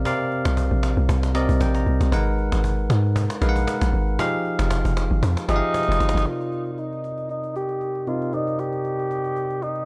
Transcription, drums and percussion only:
0.05 cajon bass
0.20 cajon slap
0.31 cajon slap
0.45 cajon slap
0.57 cajon bass
0.72 cajon slap
0.83 cajon slap
0.97 cajon slap
1.09 cajon bass
1.23 cajon slap
1.35 cajon slap
1.49 cajon bass
1.60 cajon bass, cajon slap
1.75 cajon slap
1.87 cajon slap
2.01 cajon slap
2.12 cajon bass
2.27 cajon slap
2.38 cajon slap
2.52 cajon slap
2.64 cajon bass
2.79 cajon slap
2.90 cajon slap
3.04 cajon slap
3.16 cajon bass
3.30 cajon slap
3.42 cajon slap
3.56 cajon bass
3.67 cajon bass, cajon slap
3.81 cajon slap
3.93 cajon slap
4.08 cajon slap
4.19 cajon bass
4.34 cajon slap
4.45 cajon slap
4.59 cajon slap
4.71 cajon bass, cajon slap
4.85 cajon bass
4.97 cajon slap
5.11 cajon slap
5.23 cajon bass
5.37 cajon slap
5.49 cajon slap
5.62 cajon slap
5.74 cajon bass, cajon slap
5.83 cajon slap
5.88 cajon slap
5.92 cajon slap
6.00 cajon slap
6.09 cajon slap
6.15 cajon slap
6.17 cajon slap
6.26 cajon slap
6.41 cajon slap
6.52 cajon slap
6.66 cajon slap
6.78 cajon slap
6.93 cajon slap
7.04 cajon slap
7.18 cajon slap
7.29 cajon slap
7.44 cajon slap
7.56 cajon slap
7.69 cajon slap
7.81 cajon slap
7.95 cajon slap
8.07 cajon slap
8.22 cajon slap
8.33 cajon slap
8.47 cajon slap
8.59 cajon slap
8.73 cajon slap
8.85 cajon slap
9.00 cajon slap
9.11 cajon slap
9.24 cajon slap
9.36 cajon slap
9.50 cajon slap
9.62 cajon slap
9.76 cajon slap

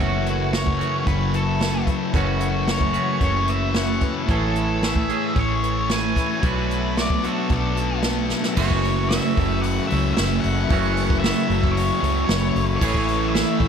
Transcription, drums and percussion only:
0.26 closed hi-hat
0.53 snare, closed hi-hat
0.67 kick
0.81 closed hi-hat
1.07 kick, closed hi-hat
1.34 closed hi-hat
1.61 snare, closed hi-hat
1.87 kick, closed hi-hat
2.14 kick, closed hi-hat
2.40 closed hi-hat
2.67 snare, closed hi-hat
2.81 kick
2.94 closed hi-hat
3.21 kick, closed hi-hat
3.48 closed hi-hat
3.74 snare, closed hi-hat
4.01 kick, snare, closed hi-hat
4.29 kick, closed hi-hat
4.55 closed hi-hat
4.83 snare, closed hi-hat
4.96 kick
5.09 closed hi-hat
5.36 kick, closed hi-hat
5.63 closed hi-hat
5.90 snare, closed hi-hat
6.16 kick, snare, closed hi-hat
6.43 kick, closed hi-hat
6.71 closed hi-hat
6.97 snare, closed hi-hat
7.10 kick
7.24 closed hi-hat
7.50 kick, closed hi-hat
7.77 closed hi-hat
8.03 snare, closed hi-hat
8.30 snare
8.44 snare
8.57 kick, crash
8.71 kick
8.84 open hi-hat
9.11 snare, open hi-hat
9.37 kick, open hi-hat
9.63 open hi-hat
9.90 open hi-hat
10.17 snare, open hi-hat
10.43 open hi-hat
10.70 kick, open hi-hat
10.97 open hi-hat
11.10 kick
11.24 snare, open hi-hat
11.38 snare
11.51 open hi-hat
11.64 kick
11.77 open hi-hat
12.03 open hi-hat
12.29 snare, open hi-hat
12.56 open hi-hat
12.82 kick, crash
12.95 kick
13.08 open hi-hat
13.35 snare, open hi-hat
13.60 kick, open hi-hat

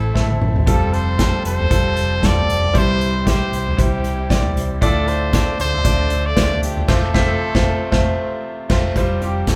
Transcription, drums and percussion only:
0.16 kick, snare
0.30 high tom
0.42 mid tom
0.56 floor tom
0.67 kick, closed hi-hat
0.93 closed hi-hat
1.19 kick, snare, closed hi-hat
1.45 closed hi-hat
1.60 floor tom
1.71 kick, closed hi-hat
1.96 closed hi-hat
2.23 kick, snare, closed hi-hat
2.38 floor tom
2.50 closed hi-hat
2.64 floor tom
2.75 kick, closed hi-hat
3.01 closed hi-hat
3.27 kick, snare, closed hi-hat
3.53 closed hi-hat
3.68 floor tom
3.79 kick, closed hi-hat
4.04 closed hi-hat
4.30 kick, snare, closed hi-hat
4.45 floor tom
4.57 closed hi-hat
4.82 kick, closed hi-hat
5.08 closed hi-hat
5.33 kick, snare, closed hi-hat
5.60 closed hi-hat
5.74 floor tom
5.85 kick, closed hi-hat
6.10 closed hi-hat
6.37 kick, snare, closed hi-hat
6.51 floor tom
6.63 closed hi-hat
6.77 floor tom
6.88 kick, snare, crash
7.14 kick, snare
7.55 kick, snare
7.92 kick, snare
8.70 kick, snare, crash
8.96 kick, closed hi-hat
9.22 closed hi-hat
9.47 kick, snare, closed hi-hat

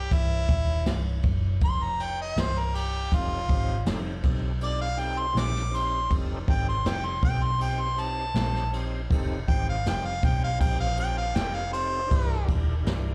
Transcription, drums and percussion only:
0.11 kick, ride
0.48 kick, ride
0.86 snare, ride
1.23 kick, ride
1.61 kick, ride
2.00 ride
2.37 snare, ride
2.57 snare
2.75 ride
3.12 kick, ride
3.49 kick, ride
3.86 snare, ride
4.23 kick, ride
4.61 ride
4.99 ride
5.37 snare, ride
5.56 snare
5.74 ride
6.11 kick, ride
6.48 kick, ride
6.86 snare, ride
7.23 kick, ride
7.61 ride
7.98 ride
8.35 snare, ride
8.56 snare
8.73 ride
9.11 kick, ride
9.48 kick, ride
9.86 snare, ride
10.23 kick, ride
10.61 kick, ride
10.97 ride
11.35 snare, ride
11.56 snare
11.74 ride
12.11 kick, ride
12.48 kick, ride
12.86 snare, ride

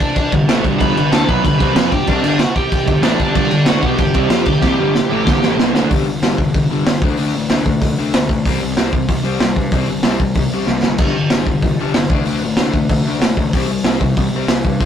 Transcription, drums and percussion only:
0.00 kick, crash
0.16 kick, crash
0.32 kick, crash
0.49 snare, crash
0.64 kick, crash
0.80 kick, crash
0.97 crash
1.13 snare, crash
1.29 kick, crash
1.45 kick, crash
1.60 kick, crash
1.76 snare, crash
1.92 kick, crash
2.07 kick, crash
2.24 crash
2.39 snare, crash
2.56 kick, crash
2.72 kick, crash
2.87 kick, crash
3.03 snare, crash
3.20 kick, crash
3.35 kick, crash
3.51 crash
3.66 snare, crash
3.83 kick, crash
3.98 kick, crash
4.14 kick, crash
4.30 snare, crash
4.46 kick, crash
4.62 kick, snare
4.95 snare
5.27 kick, snare
5.43 snare
5.59 snare
5.75 snare
5.91 kick, open hi-hat
6.23 snare, open hi-hat
6.38 kick
6.54 kick, open hi-hat
6.87 snare, open hi-hat
7.02 kick
7.17 open hi-hat
7.50 snare, open hi-hat
7.66 kick
7.82 kick, open hi-hat
8.14 snare, open hi-hat
8.29 kick
8.45 kick, open hi-hat
8.77 snare, open hi-hat
8.93 kick
9.09 kick, open hi-hat
9.40 snare, open hi-hat
9.56 kick
9.72 kick, open hi-hat
10.03 snare, open hi-hat
10.20 kick
10.35 kick, open hi-hat
10.67 snare
10.83 snare
10.98 kick, crash
11.30 snare, open hi-hat
11.47 kick
11.62 kick, open hi-hat
11.94 snare, open hi-hat
12.10 kick
12.25 open hi-hat
12.57 snare, open hi-hat
12.74 kick
12.89 kick, open hi-hat
13.22 snare, open hi-hat
13.37 kick
13.53 kick, open hi-hat
13.84 snare, open hi-hat
14.01 kick
14.17 kick, open hi-hat
14.48 snare, open hi-hat
14.65 kick
14.81 kick, open hi-hat

